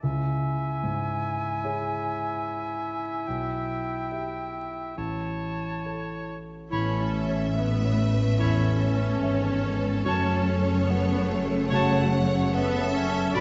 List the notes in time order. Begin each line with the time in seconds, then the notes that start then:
0.03 C#2 E4 E5 G#5
0.84 G#2
1.64 E4 G#4 C#5
3.27 B1 G5
4.12 G4 E5
4.96 A1 E4 C#5 A5
5.86 A4 C#5
6.71 A1 A2 B3 C#4 E4 A4 C#5 E5 B5
7.00 E4
7.29 C#5
7.57 B3 B4 E5
7.85 C#5
7.99 A3
8.14 B4
8.39 E2 C#4 E4 A4 C#5 B5
8.69 E4
8.97 C#5
9.23 G#1 G#2 C#5 E5
9.50 C#5
9.78 B4
10.05 F#1 F#2 A3 C#4 F#4 C#5 A5
10.34 F#4
10.62 C#5
10.88 B3 F#5
11.17 C#5
11.29 A3
11.45 A4
11.70 C#3 F#4 C#5 F#5 A5
12.00 F#4
12.13 C#5
12.27 C#5
12.54 B3 A4 E5 F#5
12.83 C#5
12.93 C#4
13.09 A4
13.34 F#1 F#2 B3 D4 F#4 B4 D5 B5